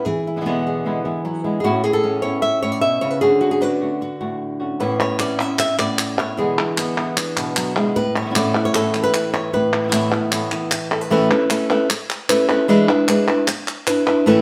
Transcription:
0.05 E3 G#4, muted nylon-string guitar stroke
0.27 E4
0.36 B2 D3 G#3 B3 E4
0.41 B2 D3 G#3 B3 E4
0.45 E2 B2 D3 G#3 B3 E4
0.67 G#4
0.85 E2 B2 D3 G#3 B3 E4
1.05 D3 E3 G#3 B3 E4
1.25 F#3, muted nylon-string guitar stroke
1.44 D3 G#3 B3 E4
1.60 A2 G#4
1.64 E3 B3 C#4 E4 F#4
1.84 B3 C#4 E4 G#4
1.93 A4
2.03 E3 B3 C#4 E4
2.22 B3 C#4 E4 C#5
2.42 E5, muted nylon-string guitar stroke
2.62 A2 B3 C#4 E4 C#5
2.72 D5
2.81 B2 E5
3.01 C#3 B3 C#4 E4 C#5
3.11 B4
3.21 D3 A3 C#4 F#4 G#4
3.41 A3 C#4 F#4
3.51 G#4
3.61 D3 A3 C#4 D4 F#4 B4
3.81 A3 C#4 F#4
4.01 F#4, muted nylon-string guitar stroke
4.21 A2 A3 F#4
4.60 A3 C#4 F#4
4.80 A2 E3 B3 C#4 E4 B4
5.00 B3 C#4 E4 C#5
5.19 E3 B3 C#4 E4 D5, clap
5.39 B3 C#4 E4 E5, clap
5.59 E5, muted nylon-string guitar stroke, clap
5.78 A2 B3 E4 D5, clap
5.98 clap
6.18 B3 C#4 E4 C#5, clap
6.37 E2 B2 D3 E3 G#3 B3 E4 G#4
6.58 D3 G#3 B3 E4
6.77 D3 G#3 B3 E4, clap
6.97 D3 G#3 B3 E4, clap
7.17 D4, muted nylon-string guitar stroke, clap
7.36 B2 D3 G#3 B3 E4, clap
7.56 F#3, clap
7.76 D3 G#3 B3 E4, clap
7.96 A2 B4, muted nylon-string guitar stroke
8.17 C#5
8.21 E3 B3 C#4 E4
8.26 E3 B3 C#4 E4
8.30 E3 B3 C#4 E4
8.35 A2 E3 A3 B3 C#4 E4 D5, clap
8.54 B3 C#4 E4, clap
8.65 C#5
8.74 A2 E3 B3 C#4 E4 A4, clap
8.94 E3 B3 C#4 E4, clap
9.04 B4
9.14 E4, muted nylon-string guitar stroke, clap
9.34 C#5, clap
9.53 A2 B4, muted nylon-string guitar stroke
9.74 E4
9.84 E3 A3 B3 E4
9.88 E3 A3 B3 E4
9.92 A2 E3 A3 B3 E4, clap
10.12 A3 B3 E4, clap
10.32 A2 E3 A3 B3 E4, clap
10.52 E3 A3 B3 E4, clap
10.71 E4, muted nylon-string guitar stroke, clap
10.92 A4, clap
11.01 B4
11.10 A2 E3 A3 C#4 E4 B4
11.30 A3 C#4 E4 B4
11.50 A3 C#4 E4 B4, clap
11.70 A3 C#4 E4 B4, clap
11.90 muted nylon-string guitar stroke, clap
12.10 clap
12.29 A3 C#4 E4 B4, clap
12.49 A3 C#4 E4 B4, clap
12.68 E3 G#3 D4 E4 B4
12.88 D4 E4 B4
13.08 G#3 D4 E4 B4, clap
13.28 D4 E4 B4, clap
13.47 muted nylon-string guitar stroke, clap
13.68 clap
13.87 D4 E4 B4, clap
14.07 D4 E4 B4, clap
14.26 A2 E3 A3 C#4 E4 B4

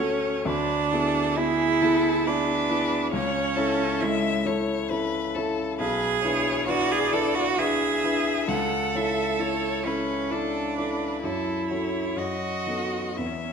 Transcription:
Already playing: C#4 C#5
0.00 A3 F#4 A4
0.45 D2 D4 B4
0.92 B3 E4 G#4 A4
1.36 B3 E4 G#4
1.81 B3 E4 G#4 A4
2.26 B3 D4 E4 G#4 B4
2.70 B3 E4 G#4
3.12 C#2 C#4 C#5
3.56 C#4 E4 A4
4.00 G#3 C#4 E4 A4 E5
4.45 C#4 E4 A4 C#5
4.90 C#4 E4 A4 B4
5.35 C#4 E4 A4
5.78 B1 G#4 B4
6.23 D4 E4 B4 C#5
6.68 D4 E4 F#4 B4 D5
6.92 G#4
7.12 D4 E4 A4 B4
7.35 F#4
7.57 D4 E4 G#4 B4 E5
8.04 D4 E4 B4
8.48 C#2 A4 F#5
8.95 C#4 E4 A4 E5
9.39 C#4 E4 A4 C#5
9.85 C#4 E4 A4 B4
10.31 C#4 D4 E4 A4
10.78 C#4 E4 A4 B4
11.23 F#2 E4 A4
11.69 C#4 F#4 A4 C#5
12.16 F#2 F#4 D#5
12.66 B3 D#4 A4
13.17 E2 B3 E5
13.26 C#4
13.35 B3
13.44 C#4

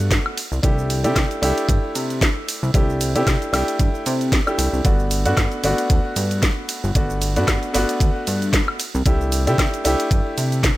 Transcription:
Already playing: G2 A3 B3 D4 F#4
0.11 kick, snare, closed hi-hat, ride, shaker
0.26 high woodblock
0.38 open hi-hat, ride, shaker
0.52 C2, shaker
0.63 C2 A3 D4 E4 G4, kick, closed hi-hat, ride, shaker
0.78 shaker
0.90 open hi-hat, ride, shaker
1.04 C3 A3 D4 E4 G4, closed hi-hat, shaker
1.16 C3, kick, snare, closed hi-hat, ride, high woodblock, shaker
1.31 closed hi-hat, shaker
1.41 C2 A3 D4 E4 G4, open hi-hat, ride, shaker
1.58 closed hi-hat, shaker
1.69 G2, kick, closed hi-hat, ride, shaker
1.95 C3, open hi-hat, ride, shaker
2.10 closed hi-hat, shaker
2.21 kick, snare, closed hi-hat, ride, shaker
2.49 open hi-hat, ride, shaker
2.63 C2, shaker
2.74 C2 A3 D4 E4 G4, kick, closed hi-hat, ride, shaker
2.90 shaker
3.01 open hi-hat, ride, shaker
3.15 C3 A3 D4 E4 G4, closed hi-hat, shaker
3.27 C3, kick, snare, closed hi-hat, ride, high woodblock, shaker
3.42 closed hi-hat, shaker
3.52 C2 A3 D4 E4 G4, snare, open hi-hat, ride, high woodblock, shaker
3.68 closed hi-hat, shaker
3.79 G2, kick, closed hi-hat, ride, shaker
3.95 shaker
4.06 C3, open hi-hat, ride, shaker
4.21 closed hi-hat, shaker
4.32 kick, snare, closed hi-hat, ride, shaker
4.46 A3 D4 E4 G4, high woodblock, shaker
4.58 C2, open hi-hat, ride, shaker
4.73 C2, shaker
4.84 G1 A3 B3 D4 F#4, kick, closed hi-hat, ride, shaker
4.99 shaker
5.11 open hi-hat, ride, shaker
5.25 G2 A3 B3 D4 F#4, closed hi-hat, shaker
5.37 G2, kick, snare, closed hi-hat, ride, high woodblock, shaker
5.52 closed hi-hat, shaker
5.63 G1 A3 B3 D4 F#4, open hi-hat, ride, shaker
5.78 closed hi-hat, shaker
5.90 D2, kick, closed hi-hat, ride, shaker
6.16 G2, open hi-hat, ride, shaker
6.31 closed hi-hat, shaker
6.43 kick, snare, closed hi-hat, ride, shaker
6.69 open hi-hat, ride, shaker
6.84 G1, shaker
6.95 G1 A3 B3 D4 F#4, kick, closed hi-hat, ride, shaker
7.10 shaker
7.22 open hi-hat, ride, shaker
7.36 G2 A3 B3 D4 F#4, closed hi-hat, shaker
7.48 G2, kick, snare, closed hi-hat, ride, high woodblock, shaker
7.63 closed hi-hat, shaker
7.73 G1 A3 B3 D4 F#4, snare, open hi-hat, ride, shaker
7.89 closed hi-hat, shaker
8.00 D2, kick, closed hi-hat, ride, shaker
8.27 G2, open hi-hat, ride, shaker
8.42 closed hi-hat, shaker
8.53 kick, snare, closed hi-hat, ride, shaker
8.68 high woodblock
8.80 open hi-hat, ride, shaker
8.95 C2, shaker
9.06 C2 A3 D4 E4 G4, kick, closed hi-hat, ride, shaker
9.21 shaker
9.32 open hi-hat, ride, shaker
9.46 C3 A3 D4 E4 G4, closed hi-hat, shaker
9.58 C3, kick, snare, closed hi-hat, ride, high woodblock, shaker
9.74 closed hi-hat, shaker
9.84 C2 A3 D4 E4 G4, open hi-hat, ride, shaker
10.00 closed hi-hat, shaker
10.11 G2, kick, closed hi-hat, ride, shaker
10.38 C3, open hi-hat, ride, shaker
10.52 closed hi-hat, shaker
10.64 kick, snare, closed hi-hat, ride, shaker

